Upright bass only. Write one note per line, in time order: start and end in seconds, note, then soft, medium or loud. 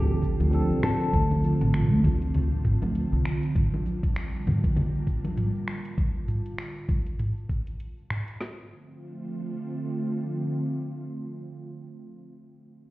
0.10 0.28 A1 medium
0.40 0.59 D2 medium
0.70 0.79 C2 medium
1.13 1.52 D2 loud
1.61 1.91 A1 loud
1.91 2.00 D2 loud
2.04 2.52 D2 medium
2.52 2.71 A1 loud
2.82 3.01 D2 medium
3.12 3.21 C2 medium